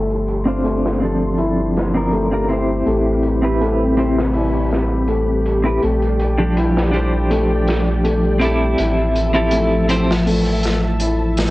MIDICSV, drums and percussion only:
0, 0, Header, 1, 2, 480
1, 0, Start_track
1, 0, Key_signature, 0, "minor"
1, 0, Tempo, 740741
1, 1855, Time_signature, 4, 2, 24, 8
1, 7455, End_track
2, 0, Start_track
2, 0, Title_t, "Drums"
2, 65, Note_on_c, 9, 42, 34
2, 130, Note_off_c, 9, 42, 0
2, 181, Note_on_c, 9, 42, 54
2, 246, Note_off_c, 9, 42, 0
2, 418, Note_on_c, 9, 42, 83
2, 483, Note_off_c, 9, 42, 0
2, 554, Note_on_c, 9, 38, 55
2, 619, Note_off_c, 9, 38, 0
2, 661, Note_on_c, 9, 42, 60
2, 726, Note_off_c, 9, 42, 0
2, 893, Note_on_c, 9, 42, 67
2, 958, Note_off_c, 9, 42, 0
2, 1144, Note_on_c, 9, 42, 51
2, 1150, Note_on_c, 9, 38, 45
2, 1209, Note_off_c, 9, 42, 0
2, 1214, Note_off_c, 9, 38, 0
2, 1374, Note_on_c, 9, 42, 65
2, 1438, Note_off_c, 9, 42, 0
2, 1613, Note_on_c, 9, 42, 56
2, 1678, Note_off_c, 9, 42, 0
2, 1858, Note_on_c, 9, 42, 66
2, 1923, Note_off_c, 9, 42, 0
2, 2092, Note_on_c, 9, 42, 59
2, 2157, Note_off_c, 9, 42, 0
2, 2341, Note_on_c, 9, 42, 74
2, 2406, Note_off_c, 9, 42, 0
2, 2574, Note_on_c, 9, 42, 58
2, 2639, Note_off_c, 9, 42, 0
2, 2712, Note_on_c, 9, 38, 43
2, 2777, Note_off_c, 9, 38, 0
2, 2809, Note_on_c, 9, 46, 74
2, 2874, Note_off_c, 9, 46, 0
2, 3051, Note_on_c, 9, 42, 51
2, 3063, Note_on_c, 9, 38, 44
2, 3116, Note_off_c, 9, 42, 0
2, 3127, Note_off_c, 9, 38, 0
2, 3289, Note_on_c, 9, 42, 68
2, 3354, Note_off_c, 9, 42, 0
2, 3535, Note_on_c, 9, 42, 54
2, 3600, Note_off_c, 9, 42, 0
2, 3774, Note_on_c, 9, 42, 69
2, 3838, Note_off_c, 9, 42, 0
2, 3901, Note_on_c, 9, 42, 39
2, 3965, Note_off_c, 9, 42, 0
2, 4013, Note_on_c, 9, 42, 61
2, 4078, Note_off_c, 9, 42, 0
2, 4256, Note_on_c, 9, 42, 85
2, 4321, Note_off_c, 9, 42, 0
2, 4387, Note_on_c, 9, 38, 52
2, 4452, Note_off_c, 9, 38, 0
2, 4494, Note_on_c, 9, 42, 61
2, 4558, Note_off_c, 9, 42, 0
2, 4736, Note_on_c, 9, 42, 77
2, 4801, Note_off_c, 9, 42, 0
2, 4974, Note_on_c, 9, 42, 57
2, 4982, Note_on_c, 9, 38, 46
2, 5039, Note_off_c, 9, 42, 0
2, 5046, Note_off_c, 9, 38, 0
2, 5215, Note_on_c, 9, 42, 80
2, 5280, Note_off_c, 9, 42, 0
2, 5451, Note_on_c, 9, 42, 51
2, 5516, Note_off_c, 9, 42, 0
2, 5690, Note_on_c, 9, 42, 76
2, 5755, Note_off_c, 9, 42, 0
2, 5932, Note_on_c, 9, 42, 56
2, 5997, Note_off_c, 9, 42, 0
2, 6163, Note_on_c, 9, 42, 87
2, 6227, Note_off_c, 9, 42, 0
2, 6408, Note_on_c, 9, 42, 61
2, 6472, Note_off_c, 9, 42, 0
2, 6549, Note_on_c, 9, 38, 47
2, 6614, Note_off_c, 9, 38, 0
2, 6653, Note_on_c, 9, 46, 62
2, 6718, Note_off_c, 9, 46, 0
2, 6888, Note_on_c, 9, 42, 58
2, 6905, Note_on_c, 9, 38, 47
2, 6953, Note_off_c, 9, 42, 0
2, 6969, Note_off_c, 9, 38, 0
2, 7127, Note_on_c, 9, 42, 69
2, 7191, Note_off_c, 9, 42, 0
2, 7369, Note_on_c, 9, 42, 58
2, 7378, Note_on_c, 9, 38, 74
2, 7434, Note_off_c, 9, 42, 0
2, 7434, Note_on_c, 9, 42, 54
2, 7443, Note_off_c, 9, 38, 0
2, 7455, Note_off_c, 9, 42, 0
2, 7455, End_track
0, 0, End_of_file